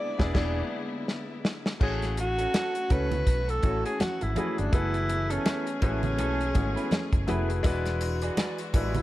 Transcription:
Already playing: D3 G#3 B3 D4 E4 G#4 D5
0.18 E1 B3 D4 E4 G#4 B4 D5, kick, snare
0.33 E1 B3 D4 E4 G#4 B4 D5, kick, snare, crash
1.08 snare
1.45 snare
1.66 snare
1.80 A1 E3 A3 C#4 E4 F#4 G#4 A4 C#5, kick, crash
2.02 snare, closed hi-hat
2.17 F#4, muted clean electric guitar stroke, closed hi-hat, muted conga
2.38 C#4 F#4 A4, closed hi-hat
2.54 C#4 F#4 A4, snare, closed hi-hat, high conga
2.75 muted clean electric guitar stroke, closed hi-hat
2.89 C#2 A3 C#4 E4 F#4 A4 B4 C#5, kick, closed hi-hat, muted conga
3.11 muted clean electric guitar stroke, closed hi-hat, low conga
3.27 B1, muted clean electric guitar stroke, kick, closed hi-hat, muted conga
3.48 A4, muted clean electric guitar stroke, closed hi-hat
3.63 A1 A3 C#4 E4 F#4 A4 C#5, kick, closed hi-hat, muted conga
3.85 G#4, muted clean electric guitar stroke, closed hi-hat
4.00 F#4, muted fingered electric bass stroke, snare, closed hi-hat, high conga
4.21 G#1 E4, muted clean electric guitar stroke, closed hi-hat
4.35 A3 C#4 E4 F#4 G#4 B4, closed hi-hat, high conga
4.57 G1 D4, muted clean electric guitar stroke, closed hi-hat
4.72 F#1 A3 B3 E4 F#4 G#4 A4 B4, kick, closed hi-hat
4.94 closed hi-hat
5.09 muted clean electric guitar stroke, closed hi-hat, muted conga
5.30 B3 C#4 E4 A4, closed hi-hat
5.45 B3 E4 A4, snare, closed hi-hat, high conga
5.67 muted clean electric guitar stroke, closed hi-hat
5.81 A1 G#3 B3 C#4 E4 F#4 G#4 A4 B4, kick, closed hi-hat, muted conga
5.88 A3
6.03 muted clean electric guitar stroke, closed hi-hat, low conga
6.18 B1 B3 E4 A4, closed hi-hat, muted conga
6.41 closed hi-hat
6.54 G#1 G#3 E4 F#4 G#4 C#5, muted clean electric guitar stroke, kick, closed hi-hat, muted conga, low conga
6.61 A3
6.76 B3 E4 B4, closed hi-hat
6.91 snare, closed hi-hat, high conga
7.13 F#1, muted clean electric guitar stroke, kick, closed hi-hat
7.27 F1 A3 B3 E4 F#4 G#4 B4, closed hi-hat, high conga
7.50 muted clean electric guitar stroke, closed hi-hat
7.63 E1 G#3 D4 E4 F#4 G#4 B4 D5, kick, closed hi-hat, muted triangle
7.85 snare, closed hi-hat, muted triangle
8.01 muted clean electric guitar stroke, closed hi-hat, triangle
8.22 F#4 G#4 D5, closed hi-hat, muted triangle
8.37 F#4 G#4 D5, snare, closed hi-hat, high conga, muted triangle
8.58 muted clean electric guitar stroke, closed hi-hat, muted triangle
8.73 A1 G3 D4 E4 F#4 G#4 B4 D5, kick, closed hi-hat, muted conga, triangle
8.79 G#3
8.94 muted clean electric guitar stroke, closed hi-hat, low conga, muted triangle

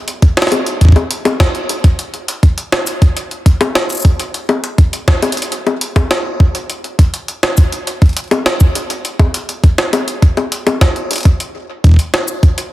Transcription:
0.08 closed hi-hat
0.22 kick, closed hi-hat
0.37 snare, closed hi-hat
0.42 snare
0.47 snare
0.52 closed hi-hat, high bongo
0.66 closed hi-hat
0.81 kick, closed hi-hat
0.85 kick
0.89 kick
0.92 kick, closed hi-hat, high bongo
1.11 closed hi-hat
1.25 closed hi-hat, high bongo
1.40 kick, snare, closed hi-hat
1.55 closed hi-hat
1.69 closed hi-hat
1.84 kick, closed hi-hat
1.99 closed hi-hat
2.14 closed hi-hat
2.28 closed hi-hat
2.43 kick, closed hi-hat
2.58 closed hi-hat
2.72 snare, closed hi-hat
2.87 closed hi-hat, shaker
3.02 kick, closed hi-hat
3.17 closed hi-hat
3.31 closed hi-hat
3.46 kick, closed hi-hat
3.61 closed hi-hat, high bongo
3.75 snare, closed hi-hat
3.90 closed hi-hat, shaker
3.93 shaker
3.95 shaker
3.97 shaker
4.00 shaker
4.02 kick, closed hi-hat, shaker
4.20 closed hi-hat
4.34 closed hi-hat
4.49 closed hi-hat, high bongo
4.64 closed hi-hat
4.78 kick, closed hi-hat
4.93 closed hi-hat
5.08 kick, snare, closed hi-hat
5.22 closed hi-hat, high bongo
5.32 closed hi-hat
5.37 closed hi-hat
5.42 closed hi-hat
5.52 closed hi-hat
5.67 closed hi-hat, high bongo
5.81 closed hi-hat
5.96 kick, closed hi-hat, high bongo
6.11 snare, closed hi-hat
6.40 kick
6.55 closed hi-hat
6.70 closed hi-hat
6.84 closed hi-hat
6.99 kick, closed hi-hat
7.14 closed hi-hat
7.28 closed hi-hat
7.43 snare, closed hi-hat
7.58 kick, closed hi-hat, shaker
7.72 closed hi-hat
7.87 closed hi-hat
8.02 kick, closed hi-hat
8.06 closed hi-hat
8.09 closed hi-hat
8.13 closed hi-hat
8.17 closed hi-hat
8.20 closed hi-hat
8.24 closed hi-hat
8.28 closed hi-hat
8.31 closed hi-hat, high bongo
8.46 snare, closed hi-hat
8.61 kick, closed hi-hat, shaker
8.75 closed hi-hat
8.90 closed hi-hat
9.05 closed hi-hat
9.19 kick, closed hi-hat, high bongo
9.34 closed hi-hat
9.49 closed hi-hat
9.64 kick, closed hi-hat
9.78 snare
9.93 closed hi-hat, high bongo
10.08 closed hi-hat
10.22 kick, closed hi-hat
10.37 closed hi-hat, high bongo
10.52 closed hi-hat
10.67 closed hi-hat, high bongo
10.81 kick, snare, closed hi-hat
10.96 closed hi-hat
11.11 closed hi-hat
11.13 closed hi-hat
11.16 closed hi-hat
11.18 closed hi-hat
11.21 closed hi-hat
11.23 kick, closed hi-hat
11.25 closed hi-hat
11.40 closed hi-hat
11.84 kick, closed hi-hat
11.87 kick
11.89 kick
11.91 kick
11.94 kick
11.96 kick, closed hi-hat
12.14 snare, closed hi-hat
12.28 shaker
12.43 kick, closed hi-hat
12.58 closed hi-hat

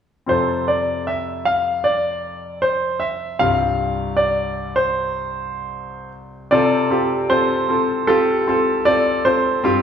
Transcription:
0.26 F2 C3 C4 F4 A4 C5
0.68 D5
1.07 E5
1.45 F5
1.84 D5
2.62 C5
3.00 E5
3.39 C2 G2 C4 F4 G4 F5
4.17 D5
4.76 C5
6.51 C3 C4 F4 A4 D5
6.90 C4 F4 G4
7.29 C4 F4 A4 C5
7.69 C4 F4 A4
8.07 C4 F4 G4 A4
8.47 C4 F4 A4
8.85 C4 F4 A4 D5
9.25 C4 F4 A4 C5
9.63 G2 C4 F4 G4

